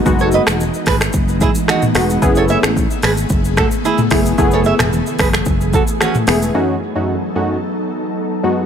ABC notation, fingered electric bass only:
X:1
M:4/4
L:1/16
Q:1/4=111
K:Bmix
V:1 name="Fingered electric bass" clef=bass
F,,,3 E,,,2 z G,,,2 F,,,3 z3 E,,,2 | F,,,3 A,,,2 z G,,,2 F,,,3 z3 F,,,2 | F,,,3 E,,,2 z F,,,2 F,,,3 z3 E,,,2 | z16 |]